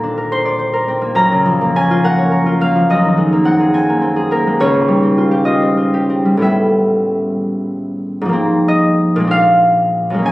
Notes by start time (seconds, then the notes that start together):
Already playing: A#2 D3 A#3 C4 A#4 C5 A#5
0.03 D4
0.17 A#4
0.32 C5 C6
0.45 D5
0.59 C5
0.73 A#4
0.88 C4
1.02 A#3
1.15 F#2 A#5
1.32 C#3
1.46 F3
1.61 A#3
1.76 C#4 G#5
1.91 F4
2.04 A#4 F#5
2.18 C#5
2.31 A#4
2.46 F4
2.61 A#3 F5
2.75 F3
2.90 F#2 D#5
3.04 D#3
3.17 G#3
3.33 A#3
3.45 C4 F#5
3.60 G#4
3.74 C4 G#5
3.89 A#3
4.01 C4
4.16 G#4
4.31 A#3 A#4
4.47 G#3
4.60 C#2 C#5
4.74 G#2
4.88 G3
5.03 C4
5.18 F4
5.31 G4
5.45 F4 D#5
5.62 C4
5.77 F4
5.94 G4
6.10 C4
6.25 G3
6.37 A2 G3 B3 C#4
6.42 E5
8.21 G#2 F3
8.29 A#3 C4
8.68 D#5
9.16 A#2
9.20 G#3
9.24 C4 D4
9.31 F5
10.10 F#2 G#3
10.19 A#3 C#4
10.26 G#5